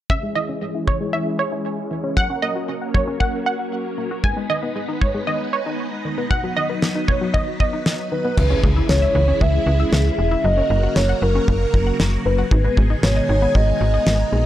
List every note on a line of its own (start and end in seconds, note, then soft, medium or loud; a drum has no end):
0.10 0.17 C#3 medium
0.10 2.15 E3 medium
0.10 2.15 G#3 medium
0.10 4.20 C#4 medium
0.10 2.15 G#4 medium
0.10 2.15 C#5 medium
0.10 0.27 E5 medium
0.10 kick loud
0.23 0.30 G#3 medium
0.35 0.43 E3 medium
0.35 0.52 D#5 medium
0.49 0.56 C#4 medium
0.62 0.69 G#3 medium
0.75 0.82 E4 medium
0.88 0.95 C#3 medium
0.88 1.04 C#5 medium
0.88 kick medium
1.01 1.08 G#3 medium
1.13 1.21 E3 medium
1.13 1.30 E5 medium
1.39 1.47 C#5 medium
1.52 1.60 E4 medium
1.91 1.98 E3 medium
2.04 2.11 C#4 medium
2.17 2.24 F#3 medium
2.17 4.22 F#3 medium
2.17 4.22 A#3 medium
2.17 4.22 A#4 medium
2.17 4.22 C#5 medium
2.17 2.33 F#5 loud
2.17 kick loud
2.30 2.37 C#4 medium
2.42 2.50 A#3 medium
2.42 2.59 D#5 medium
2.56 2.63 F#4 medium
2.69 2.76 C#4 medium
2.82 2.89 F#5 medium
2.94 3.02 F#3 medium
2.94 3.11 C#5 medium
2.94 kick medium
3.07 3.15 C#4 medium
3.20 3.28 A#3 medium
3.20 3.37 F#5 medium
3.20 kick medium
3.46 3.55 F#5 medium
3.59 3.67 F#5 medium
3.98 4.05 A#3 medium
4.11 4.18 F#4 medium
4.24 4.31 G#2 medium
4.24 6.29 G#3 medium
4.24 6.29 B3 medium
4.24 8.34 D#4 medium
4.24 6.29 B4 medium
4.24 8.34 D#5 medium
4.24 4.40 G#5 medium
4.24 kick loud
4.37 4.44 G#3 medium
4.50 4.57 D#3 medium
4.50 4.66 D#5 medium
4.63 4.70 B3 medium
4.76 4.83 G#3 medium
4.88 4.96 D#4 medium
5.01 5.09 G#2 medium
5.01 5.18 C#5 medium
5.01 kick medium
5.14 5.22 G#3 medium
5.27 5.35 D#3 medium
5.27 5.44 D#5 medium
5.53 5.61 C#5 medium
5.66 5.74 D#4 medium
6.05 6.12 D#3 medium
6.18 6.25 B3 medium
6.30 6.38 B2 medium
6.30 8.35 F#3 medium
6.30 8.35 B3 medium
6.30 8.35 B4 medium
6.30 6.47 F#5 loud
6.30 kick loud
6.44 6.51 F#3 medium
6.57 6.64 D#3 medium
6.57 6.73 D#5 medium
6.70 6.77 B3 medium
6.82 6.90 F#3 medium
6.82 snare loud
6.95 7.03 D#4 medium
7.08 7.16 B2 medium
7.08 7.25 C#5 medium
7.08 kick medium
7.21 7.29 F#3 medium
7.34 7.42 D#3 medium
7.34 7.50 D#5 medium
7.34 kick medium
7.60 7.68 D#5 medium
7.60 kick medium
7.73 7.81 D#4 medium
7.86 snare loud
8.12 8.19 D#3 medium
8.12 8.60 B4 loud
8.25 8.32 B3 medium
8.38 8.56 C#2 loud
8.38 12.47 C#3 medium
8.38 8.45 E3 medium
8.38 10.43 E3 medium
8.38 10.42 G#3 medium
8.38 10.42 E4 medium
8.38 10.42 G#4 medium
8.38 kick loud
8.38 crash medium
8.38 impact medium
8.50 8.58 C#4 medium
8.63 8.82 C#2 loud
8.63 8.71 G#3 medium
8.63 kick medium
8.76 8.84 E4 medium
8.89 9.07 C#2 medium
8.89 8.97 C#4 medium
8.89 9.43 C#5 loud
8.89 snare loud
9.02 9.10 E5 medium
9.15 9.33 C#2 loud
9.15 9.22 E3 medium
9.28 9.35 C#4 medium
9.41 9.59 C#2 loud
9.41 9.48 G#3 medium
9.41 9.93 E5 loud
9.41 kick medium
9.67 9.85 C#2 loud
9.80 9.87 E5 medium
9.92 10.11 C#2 loud
9.92 10.46 E5 loud
9.92 snare loud
10.18 10.37 E1 medium
10.18 10.26 G#3 medium
10.31 10.39 E4 medium
10.44 10.63 F#1 loud
10.44 10.52 F#3 medium
10.44 12.49 F#3 medium
10.44 12.49 A#3 medium
10.44 12.49 F#4 medium
10.44 12.49 A#4 medium
10.44 10.98 D#5 loud
10.57 10.65 C#4 medium
10.70 10.88 F#1 loud
10.70 10.78 A#3 medium
10.83 10.91 F#4 medium
10.96 11.14 F#1 loud
10.96 11.04 C#4 medium
10.96 11.24 C#5 medium
10.96 snare loud
11.09 11.17 F#5 medium
11.22 11.40 F#1 loud
11.22 11.30 F#3 medium
11.22 12.00 A#4 medium
11.35 11.43 C#4 medium
11.48 11.66 F#1 loud
11.48 11.55 A#3 medium
11.48 kick medium
11.74 11.92 F#1 medium
11.74 kick medium
11.87 11.94 F#5 medium
12.00 12.18 F#1 loud
12.00 snare loud
12.25 12.44 F#1 medium
12.25 12.33 A#3 medium
12.25 12.74 B4 loud
12.38 12.46 F#4 loud
12.51 12.69 G#1 loud
12.51 14.46 B2 medium
12.51 14.46 D#3 medium
12.51 12.59 D#3 medium
12.51 14.46 G#3 medium
12.51 14.46 D#4 medium
12.51 14.46 G#4 medium
12.51 kick loud
12.64 12.72 B3 medium
12.77 12.95 G#1 loud
12.77 12.85 G#3 medium
12.77 kick medium
12.90 12.98 D#4 medium
13.03 13.21 G#1 loud
13.03 13.11 B3 medium
13.03 13.57 C#5 medium
13.03 snare loud
13.16 13.24 D#5 medium
13.29 13.47 G#1 loud
13.29 13.37 D#3 medium
13.42 13.50 B3 medium
13.55 13.73 G#1 loud
13.55 13.62 G#3 medium
13.55 14.07 D#5 loud
13.55 kick medium
13.81 13.99 G#1 loud
13.94 14.01 D#5 medium
14.07 14.25 G#1 loud
14.07 14.46 D#5 loud
14.07 snare loud
14.32 14.46 A#1 medium
14.32 14.40 G#3 medium